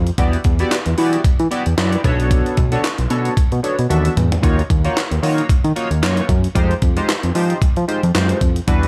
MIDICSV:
0, 0, Header, 1, 4, 480
1, 0, Start_track
1, 0, Tempo, 530973
1, 165, Time_signature, 4, 2, 24, 8
1, 8027, End_track
2, 0, Start_track
2, 0, Title_t, "Analog polysynth"
2, 0, Program_c, 0, 90
2, 164, Note_on_c, 0, 59, 101
2, 166, Note_on_c, 0, 64, 87
2, 168, Note_on_c, 0, 66, 86
2, 171, Note_on_c, 0, 67, 91
2, 172, Note_on_c, 0, 74, 104
2, 327, Note_off_c, 0, 59, 0
2, 328, Note_off_c, 0, 64, 0
2, 329, Note_off_c, 0, 66, 0
2, 330, Note_off_c, 0, 67, 0
2, 331, Note_off_c, 0, 74, 0
2, 539, Note_on_c, 0, 59, 95
2, 540, Note_on_c, 0, 64, 86
2, 541, Note_on_c, 0, 66, 91
2, 542, Note_on_c, 0, 67, 81
2, 545, Note_on_c, 0, 74, 109
2, 680, Note_off_c, 0, 59, 0
2, 681, Note_off_c, 0, 64, 0
2, 681, Note_off_c, 0, 66, 0
2, 682, Note_off_c, 0, 67, 0
2, 683, Note_off_c, 0, 74, 0
2, 881, Note_on_c, 0, 59, 85
2, 883, Note_on_c, 0, 64, 79
2, 883, Note_on_c, 0, 66, 85
2, 885, Note_on_c, 0, 67, 74
2, 888, Note_on_c, 0, 74, 90
2, 1090, Note_off_c, 0, 59, 0
2, 1091, Note_off_c, 0, 64, 0
2, 1091, Note_off_c, 0, 66, 0
2, 1092, Note_off_c, 0, 67, 0
2, 1093, Note_off_c, 0, 74, 0
2, 1362, Note_on_c, 0, 59, 86
2, 1363, Note_on_c, 0, 64, 80
2, 1366, Note_on_c, 0, 66, 79
2, 1368, Note_on_c, 0, 67, 84
2, 1368, Note_on_c, 0, 74, 89
2, 1477, Note_off_c, 0, 59, 0
2, 1477, Note_off_c, 0, 64, 0
2, 1479, Note_off_c, 0, 66, 0
2, 1480, Note_off_c, 0, 67, 0
2, 1480, Note_off_c, 0, 74, 0
2, 1602, Note_on_c, 0, 59, 79
2, 1604, Note_on_c, 0, 64, 76
2, 1604, Note_on_c, 0, 66, 78
2, 1607, Note_on_c, 0, 67, 80
2, 1610, Note_on_c, 0, 74, 86
2, 1810, Note_off_c, 0, 59, 0
2, 1811, Note_off_c, 0, 64, 0
2, 1811, Note_off_c, 0, 66, 0
2, 1813, Note_off_c, 0, 67, 0
2, 1814, Note_off_c, 0, 74, 0
2, 1842, Note_on_c, 0, 59, 93
2, 1845, Note_on_c, 0, 62, 80
2, 1847, Note_on_c, 0, 66, 82
2, 1849, Note_on_c, 0, 69, 82
2, 1850, Note_on_c, 0, 73, 96
2, 2324, Note_off_c, 0, 59, 0
2, 2325, Note_off_c, 0, 62, 0
2, 2326, Note_off_c, 0, 66, 0
2, 2327, Note_off_c, 0, 69, 0
2, 2328, Note_off_c, 0, 73, 0
2, 2457, Note_on_c, 0, 59, 99
2, 2458, Note_on_c, 0, 62, 86
2, 2458, Note_on_c, 0, 66, 80
2, 2461, Note_on_c, 0, 69, 83
2, 2462, Note_on_c, 0, 73, 107
2, 2599, Note_off_c, 0, 59, 0
2, 2600, Note_off_c, 0, 62, 0
2, 2600, Note_off_c, 0, 66, 0
2, 2601, Note_off_c, 0, 69, 0
2, 2602, Note_off_c, 0, 73, 0
2, 2802, Note_on_c, 0, 59, 82
2, 2802, Note_on_c, 0, 62, 78
2, 2807, Note_on_c, 0, 66, 80
2, 2808, Note_on_c, 0, 69, 81
2, 2808, Note_on_c, 0, 73, 95
2, 3010, Note_off_c, 0, 59, 0
2, 3010, Note_off_c, 0, 62, 0
2, 3013, Note_off_c, 0, 66, 0
2, 3013, Note_off_c, 0, 69, 0
2, 3013, Note_off_c, 0, 73, 0
2, 3281, Note_on_c, 0, 59, 87
2, 3284, Note_on_c, 0, 62, 77
2, 3285, Note_on_c, 0, 66, 78
2, 3288, Note_on_c, 0, 69, 80
2, 3289, Note_on_c, 0, 73, 98
2, 3396, Note_off_c, 0, 59, 0
2, 3398, Note_off_c, 0, 62, 0
2, 3399, Note_off_c, 0, 66, 0
2, 3400, Note_off_c, 0, 69, 0
2, 3400, Note_off_c, 0, 73, 0
2, 3520, Note_on_c, 0, 59, 86
2, 3521, Note_on_c, 0, 62, 78
2, 3523, Note_on_c, 0, 66, 78
2, 3526, Note_on_c, 0, 69, 77
2, 3528, Note_on_c, 0, 76, 93
2, 3729, Note_off_c, 0, 59, 0
2, 3730, Note_off_c, 0, 62, 0
2, 3731, Note_off_c, 0, 66, 0
2, 3732, Note_off_c, 0, 69, 0
2, 3733, Note_off_c, 0, 76, 0
2, 4000, Note_on_c, 0, 58, 91
2, 4002, Note_on_c, 0, 63, 88
2, 4002, Note_on_c, 0, 65, 83
2, 4005, Note_on_c, 0, 66, 82
2, 4007, Note_on_c, 0, 73, 108
2, 4165, Note_off_c, 0, 58, 0
2, 4166, Note_off_c, 0, 63, 0
2, 4166, Note_off_c, 0, 65, 0
2, 4167, Note_off_c, 0, 66, 0
2, 4168, Note_off_c, 0, 73, 0
2, 4379, Note_on_c, 0, 58, 89
2, 4379, Note_on_c, 0, 63, 89
2, 4382, Note_on_c, 0, 65, 83
2, 4382, Note_on_c, 0, 66, 91
2, 4385, Note_on_c, 0, 73, 97
2, 4520, Note_off_c, 0, 58, 0
2, 4520, Note_off_c, 0, 63, 0
2, 4522, Note_off_c, 0, 65, 0
2, 4522, Note_off_c, 0, 66, 0
2, 4523, Note_off_c, 0, 73, 0
2, 4721, Note_on_c, 0, 58, 86
2, 4725, Note_on_c, 0, 63, 80
2, 4727, Note_on_c, 0, 65, 77
2, 4727, Note_on_c, 0, 66, 82
2, 4727, Note_on_c, 0, 73, 92
2, 4930, Note_off_c, 0, 58, 0
2, 4932, Note_off_c, 0, 63, 0
2, 4932, Note_off_c, 0, 65, 0
2, 4933, Note_off_c, 0, 66, 0
2, 4933, Note_off_c, 0, 73, 0
2, 5203, Note_on_c, 0, 58, 87
2, 5204, Note_on_c, 0, 63, 80
2, 5206, Note_on_c, 0, 65, 77
2, 5209, Note_on_c, 0, 66, 77
2, 5209, Note_on_c, 0, 73, 94
2, 5317, Note_off_c, 0, 58, 0
2, 5318, Note_off_c, 0, 63, 0
2, 5319, Note_off_c, 0, 65, 0
2, 5320, Note_off_c, 0, 66, 0
2, 5320, Note_off_c, 0, 73, 0
2, 5443, Note_on_c, 0, 63, 72
2, 5444, Note_on_c, 0, 58, 82
2, 5447, Note_on_c, 0, 65, 78
2, 5448, Note_on_c, 0, 66, 78
2, 5449, Note_on_c, 0, 73, 88
2, 5651, Note_off_c, 0, 58, 0
2, 5651, Note_off_c, 0, 63, 0
2, 5653, Note_off_c, 0, 65, 0
2, 5653, Note_off_c, 0, 66, 0
2, 5654, Note_off_c, 0, 73, 0
2, 5920, Note_on_c, 0, 56, 93
2, 5920, Note_on_c, 0, 63, 83
2, 5921, Note_on_c, 0, 65, 84
2, 5924, Note_on_c, 0, 67, 84
2, 5927, Note_on_c, 0, 72, 94
2, 6085, Note_off_c, 0, 56, 0
2, 6085, Note_off_c, 0, 63, 0
2, 6085, Note_off_c, 0, 65, 0
2, 6087, Note_off_c, 0, 67, 0
2, 6088, Note_off_c, 0, 72, 0
2, 6295, Note_on_c, 0, 56, 86
2, 6299, Note_on_c, 0, 63, 84
2, 6299, Note_on_c, 0, 65, 84
2, 6300, Note_on_c, 0, 67, 82
2, 6303, Note_on_c, 0, 72, 101
2, 6438, Note_off_c, 0, 56, 0
2, 6440, Note_off_c, 0, 63, 0
2, 6440, Note_off_c, 0, 65, 0
2, 6441, Note_off_c, 0, 67, 0
2, 6442, Note_off_c, 0, 72, 0
2, 6642, Note_on_c, 0, 56, 83
2, 6646, Note_on_c, 0, 63, 80
2, 6647, Note_on_c, 0, 65, 74
2, 6649, Note_on_c, 0, 67, 77
2, 6650, Note_on_c, 0, 72, 91
2, 6850, Note_off_c, 0, 56, 0
2, 6852, Note_off_c, 0, 63, 0
2, 6853, Note_off_c, 0, 65, 0
2, 6854, Note_off_c, 0, 67, 0
2, 6854, Note_off_c, 0, 72, 0
2, 7122, Note_on_c, 0, 56, 80
2, 7122, Note_on_c, 0, 63, 73
2, 7124, Note_on_c, 0, 65, 80
2, 7126, Note_on_c, 0, 67, 75
2, 7127, Note_on_c, 0, 72, 96
2, 7237, Note_off_c, 0, 56, 0
2, 7237, Note_off_c, 0, 63, 0
2, 7238, Note_off_c, 0, 65, 0
2, 7239, Note_off_c, 0, 67, 0
2, 7239, Note_off_c, 0, 72, 0
2, 7363, Note_on_c, 0, 56, 85
2, 7366, Note_on_c, 0, 65, 79
2, 7367, Note_on_c, 0, 63, 80
2, 7369, Note_on_c, 0, 67, 71
2, 7370, Note_on_c, 0, 72, 96
2, 7570, Note_off_c, 0, 56, 0
2, 7572, Note_off_c, 0, 63, 0
2, 7572, Note_off_c, 0, 65, 0
2, 7574, Note_off_c, 0, 67, 0
2, 7574, Note_off_c, 0, 72, 0
2, 7840, Note_on_c, 0, 55, 86
2, 7843, Note_on_c, 0, 62, 86
2, 7843, Note_on_c, 0, 64, 87
2, 7845, Note_on_c, 0, 66, 91
2, 7847, Note_on_c, 0, 71, 111
2, 8005, Note_off_c, 0, 55, 0
2, 8006, Note_off_c, 0, 62, 0
2, 8006, Note_off_c, 0, 64, 0
2, 8007, Note_off_c, 0, 66, 0
2, 8008, Note_off_c, 0, 71, 0
2, 8027, End_track
3, 0, Start_track
3, 0, Title_t, "Analog synth bass"
3, 0, Program_c, 1, 38
3, 0, Note_on_c, 1, 41, 95
3, 97, Note_off_c, 1, 41, 0
3, 164, Note_on_c, 1, 40, 105
3, 336, Note_off_c, 1, 40, 0
3, 407, Note_on_c, 1, 40, 109
3, 577, Note_off_c, 1, 40, 0
3, 780, Note_on_c, 1, 40, 97
3, 855, Note_off_c, 1, 40, 0
3, 888, Note_on_c, 1, 52, 96
3, 1058, Note_off_c, 1, 52, 0
3, 1125, Note_on_c, 1, 52, 49
3, 1179, Note_off_c, 1, 52, 0
3, 1262, Note_on_c, 1, 52, 94
3, 1337, Note_off_c, 1, 52, 0
3, 1504, Note_on_c, 1, 40, 89
3, 1578, Note_off_c, 1, 40, 0
3, 1608, Note_on_c, 1, 42, 102
3, 1778, Note_off_c, 1, 42, 0
3, 1848, Note_on_c, 1, 35, 97
3, 2189, Note_off_c, 1, 35, 0
3, 2329, Note_on_c, 1, 35, 97
3, 2499, Note_off_c, 1, 35, 0
3, 2701, Note_on_c, 1, 35, 90
3, 2776, Note_off_c, 1, 35, 0
3, 2807, Note_on_c, 1, 47, 98
3, 2978, Note_off_c, 1, 47, 0
3, 3047, Note_on_c, 1, 47, 42
3, 3100, Note_off_c, 1, 47, 0
3, 3183, Note_on_c, 1, 47, 102
3, 3257, Note_off_c, 1, 47, 0
3, 3427, Note_on_c, 1, 47, 96
3, 3499, Note_off_c, 1, 47, 0
3, 3527, Note_on_c, 1, 39, 104
3, 3697, Note_off_c, 1, 39, 0
3, 3767, Note_on_c, 1, 40, 98
3, 3937, Note_off_c, 1, 40, 0
3, 4010, Note_on_c, 1, 39, 122
3, 4179, Note_off_c, 1, 39, 0
3, 4251, Note_on_c, 1, 39, 102
3, 4420, Note_off_c, 1, 39, 0
3, 4623, Note_on_c, 1, 39, 90
3, 4697, Note_off_c, 1, 39, 0
3, 4726, Note_on_c, 1, 51, 91
3, 4897, Note_off_c, 1, 51, 0
3, 4967, Note_on_c, 1, 51, 44
3, 5021, Note_off_c, 1, 51, 0
3, 5102, Note_on_c, 1, 51, 103
3, 5177, Note_off_c, 1, 51, 0
3, 5340, Note_on_c, 1, 39, 98
3, 5445, Note_on_c, 1, 42, 100
3, 5459, Note_off_c, 1, 39, 0
3, 5616, Note_off_c, 1, 42, 0
3, 5686, Note_on_c, 1, 42, 98
3, 5857, Note_off_c, 1, 42, 0
3, 5927, Note_on_c, 1, 41, 118
3, 6098, Note_off_c, 1, 41, 0
3, 6168, Note_on_c, 1, 41, 96
3, 6338, Note_off_c, 1, 41, 0
3, 6543, Note_on_c, 1, 41, 94
3, 6617, Note_off_c, 1, 41, 0
3, 6647, Note_on_c, 1, 53, 94
3, 6817, Note_off_c, 1, 53, 0
3, 6886, Note_on_c, 1, 53, 40
3, 6939, Note_off_c, 1, 53, 0
3, 7023, Note_on_c, 1, 53, 102
3, 7097, Note_off_c, 1, 53, 0
3, 7263, Note_on_c, 1, 41, 102
3, 7337, Note_off_c, 1, 41, 0
3, 7368, Note_on_c, 1, 42, 98
3, 7538, Note_off_c, 1, 42, 0
3, 7606, Note_on_c, 1, 41, 86
3, 7777, Note_off_c, 1, 41, 0
3, 7845, Note_on_c, 1, 40, 121
3, 8016, Note_off_c, 1, 40, 0
3, 8027, End_track
4, 0, Start_track
4, 0, Title_t, "Drums"
4, 60, Note_on_c, 9, 42, 57
4, 150, Note_off_c, 9, 42, 0
4, 163, Note_on_c, 9, 42, 109
4, 164, Note_on_c, 9, 36, 122
4, 254, Note_off_c, 9, 42, 0
4, 255, Note_off_c, 9, 36, 0
4, 301, Note_on_c, 9, 42, 55
4, 392, Note_off_c, 9, 42, 0
4, 400, Note_on_c, 9, 42, 73
4, 405, Note_on_c, 9, 36, 103
4, 491, Note_off_c, 9, 42, 0
4, 495, Note_off_c, 9, 36, 0
4, 535, Note_on_c, 9, 42, 56
4, 625, Note_off_c, 9, 42, 0
4, 645, Note_on_c, 9, 38, 126
4, 646, Note_on_c, 9, 42, 98
4, 652, Note_on_c, 9, 39, 101
4, 735, Note_off_c, 9, 38, 0
4, 736, Note_off_c, 9, 42, 0
4, 742, Note_off_c, 9, 39, 0
4, 775, Note_on_c, 9, 42, 60
4, 865, Note_off_c, 9, 42, 0
4, 883, Note_on_c, 9, 46, 79
4, 974, Note_off_c, 9, 46, 0
4, 1020, Note_on_c, 9, 42, 56
4, 1111, Note_off_c, 9, 42, 0
4, 1125, Note_on_c, 9, 36, 127
4, 1127, Note_on_c, 9, 42, 94
4, 1216, Note_off_c, 9, 36, 0
4, 1217, Note_off_c, 9, 42, 0
4, 1261, Note_on_c, 9, 42, 43
4, 1351, Note_off_c, 9, 42, 0
4, 1370, Note_on_c, 9, 42, 74
4, 1460, Note_off_c, 9, 42, 0
4, 1500, Note_on_c, 9, 42, 49
4, 1591, Note_off_c, 9, 42, 0
4, 1607, Note_on_c, 9, 38, 114
4, 1609, Note_on_c, 9, 42, 94
4, 1615, Note_on_c, 9, 39, 88
4, 1698, Note_off_c, 9, 38, 0
4, 1699, Note_off_c, 9, 42, 0
4, 1705, Note_off_c, 9, 39, 0
4, 1740, Note_on_c, 9, 42, 65
4, 1831, Note_off_c, 9, 42, 0
4, 1847, Note_on_c, 9, 36, 86
4, 1849, Note_on_c, 9, 42, 68
4, 1938, Note_off_c, 9, 36, 0
4, 1940, Note_off_c, 9, 42, 0
4, 1986, Note_on_c, 9, 42, 55
4, 2076, Note_off_c, 9, 42, 0
4, 2087, Note_on_c, 9, 36, 118
4, 2088, Note_on_c, 9, 42, 110
4, 2177, Note_off_c, 9, 36, 0
4, 2179, Note_off_c, 9, 42, 0
4, 2226, Note_on_c, 9, 42, 52
4, 2316, Note_off_c, 9, 42, 0
4, 2325, Note_on_c, 9, 42, 70
4, 2328, Note_on_c, 9, 36, 104
4, 2416, Note_off_c, 9, 42, 0
4, 2419, Note_off_c, 9, 36, 0
4, 2458, Note_on_c, 9, 42, 56
4, 2548, Note_off_c, 9, 42, 0
4, 2567, Note_on_c, 9, 38, 122
4, 2569, Note_on_c, 9, 42, 93
4, 2575, Note_on_c, 9, 39, 106
4, 2658, Note_off_c, 9, 38, 0
4, 2659, Note_off_c, 9, 42, 0
4, 2665, Note_off_c, 9, 39, 0
4, 2698, Note_on_c, 9, 42, 61
4, 2788, Note_off_c, 9, 42, 0
4, 2805, Note_on_c, 9, 42, 85
4, 2896, Note_off_c, 9, 42, 0
4, 2941, Note_on_c, 9, 42, 53
4, 3031, Note_off_c, 9, 42, 0
4, 3047, Note_on_c, 9, 36, 125
4, 3050, Note_on_c, 9, 42, 97
4, 3138, Note_off_c, 9, 36, 0
4, 3140, Note_off_c, 9, 42, 0
4, 3181, Note_on_c, 9, 42, 45
4, 3271, Note_off_c, 9, 42, 0
4, 3290, Note_on_c, 9, 42, 77
4, 3381, Note_off_c, 9, 42, 0
4, 3423, Note_on_c, 9, 42, 52
4, 3513, Note_off_c, 9, 42, 0
4, 3529, Note_on_c, 9, 48, 57
4, 3532, Note_on_c, 9, 42, 100
4, 3620, Note_off_c, 9, 48, 0
4, 3622, Note_off_c, 9, 42, 0
4, 3661, Note_on_c, 9, 42, 68
4, 3752, Note_off_c, 9, 42, 0
4, 3771, Note_on_c, 9, 42, 71
4, 3771, Note_on_c, 9, 45, 96
4, 3862, Note_off_c, 9, 42, 0
4, 3862, Note_off_c, 9, 45, 0
4, 3906, Note_on_c, 9, 42, 59
4, 3906, Note_on_c, 9, 43, 94
4, 3997, Note_off_c, 9, 42, 0
4, 3997, Note_off_c, 9, 43, 0
4, 4008, Note_on_c, 9, 36, 121
4, 4011, Note_on_c, 9, 42, 114
4, 4099, Note_off_c, 9, 36, 0
4, 4101, Note_off_c, 9, 42, 0
4, 4150, Note_on_c, 9, 42, 48
4, 4241, Note_off_c, 9, 42, 0
4, 4250, Note_on_c, 9, 36, 107
4, 4251, Note_on_c, 9, 42, 69
4, 4340, Note_off_c, 9, 36, 0
4, 4341, Note_off_c, 9, 42, 0
4, 4381, Note_on_c, 9, 42, 56
4, 4471, Note_off_c, 9, 42, 0
4, 4492, Note_on_c, 9, 38, 127
4, 4493, Note_on_c, 9, 42, 88
4, 4499, Note_on_c, 9, 39, 99
4, 4582, Note_off_c, 9, 38, 0
4, 4583, Note_off_c, 9, 42, 0
4, 4589, Note_off_c, 9, 39, 0
4, 4624, Note_on_c, 9, 42, 57
4, 4715, Note_off_c, 9, 42, 0
4, 4732, Note_on_c, 9, 46, 84
4, 4822, Note_off_c, 9, 46, 0
4, 4866, Note_on_c, 9, 42, 54
4, 4956, Note_off_c, 9, 42, 0
4, 4967, Note_on_c, 9, 36, 124
4, 4971, Note_on_c, 9, 42, 95
4, 5057, Note_off_c, 9, 36, 0
4, 5062, Note_off_c, 9, 42, 0
4, 5103, Note_on_c, 9, 42, 42
4, 5193, Note_off_c, 9, 42, 0
4, 5210, Note_on_c, 9, 42, 75
4, 5301, Note_off_c, 9, 42, 0
4, 5343, Note_on_c, 9, 42, 51
4, 5434, Note_off_c, 9, 42, 0
4, 5450, Note_on_c, 9, 38, 119
4, 5451, Note_on_c, 9, 42, 91
4, 5457, Note_on_c, 9, 39, 97
4, 5541, Note_off_c, 9, 38, 0
4, 5542, Note_off_c, 9, 42, 0
4, 5548, Note_off_c, 9, 39, 0
4, 5579, Note_on_c, 9, 42, 61
4, 5670, Note_off_c, 9, 42, 0
4, 5686, Note_on_c, 9, 36, 98
4, 5687, Note_on_c, 9, 42, 74
4, 5777, Note_off_c, 9, 36, 0
4, 5777, Note_off_c, 9, 42, 0
4, 5823, Note_on_c, 9, 42, 59
4, 5914, Note_off_c, 9, 42, 0
4, 5926, Note_on_c, 9, 36, 122
4, 5927, Note_on_c, 9, 42, 122
4, 6016, Note_off_c, 9, 36, 0
4, 6018, Note_off_c, 9, 42, 0
4, 6065, Note_on_c, 9, 42, 47
4, 6155, Note_off_c, 9, 42, 0
4, 6165, Note_on_c, 9, 42, 74
4, 6167, Note_on_c, 9, 36, 107
4, 6255, Note_off_c, 9, 42, 0
4, 6258, Note_off_c, 9, 36, 0
4, 6298, Note_on_c, 9, 42, 61
4, 6388, Note_off_c, 9, 42, 0
4, 6407, Note_on_c, 9, 38, 117
4, 6409, Note_on_c, 9, 42, 92
4, 6415, Note_on_c, 9, 39, 110
4, 6498, Note_off_c, 9, 38, 0
4, 6499, Note_off_c, 9, 42, 0
4, 6505, Note_off_c, 9, 39, 0
4, 6539, Note_on_c, 9, 42, 62
4, 6630, Note_off_c, 9, 42, 0
4, 6646, Note_on_c, 9, 46, 83
4, 6736, Note_off_c, 9, 46, 0
4, 6780, Note_on_c, 9, 42, 51
4, 6871, Note_off_c, 9, 42, 0
4, 6885, Note_on_c, 9, 36, 123
4, 6889, Note_on_c, 9, 42, 92
4, 6976, Note_off_c, 9, 36, 0
4, 6979, Note_off_c, 9, 42, 0
4, 7019, Note_on_c, 9, 42, 43
4, 7110, Note_off_c, 9, 42, 0
4, 7129, Note_on_c, 9, 42, 70
4, 7220, Note_off_c, 9, 42, 0
4, 7263, Note_on_c, 9, 42, 48
4, 7353, Note_off_c, 9, 42, 0
4, 7366, Note_on_c, 9, 38, 120
4, 7367, Note_on_c, 9, 42, 93
4, 7373, Note_on_c, 9, 39, 89
4, 7456, Note_off_c, 9, 38, 0
4, 7458, Note_off_c, 9, 42, 0
4, 7464, Note_off_c, 9, 39, 0
4, 7496, Note_on_c, 9, 42, 65
4, 7586, Note_off_c, 9, 42, 0
4, 7605, Note_on_c, 9, 36, 92
4, 7605, Note_on_c, 9, 42, 78
4, 7695, Note_off_c, 9, 36, 0
4, 7695, Note_off_c, 9, 42, 0
4, 7739, Note_on_c, 9, 42, 57
4, 7830, Note_off_c, 9, 42, 0
4, 7844, Note_on_c, 9, 42, 116
4, 7845, Note_on_c, 9, 36, 127
4, 7935, Note_off_c, 9, 42, 0
4, 7936, Note_off_c, 9, 36, 0
4, 7985, Note_on_c, 9, 42, 54
4, 8027, Note_off_c, 9, 42, 0
4, 8027, End_track
0, 0, End_of_file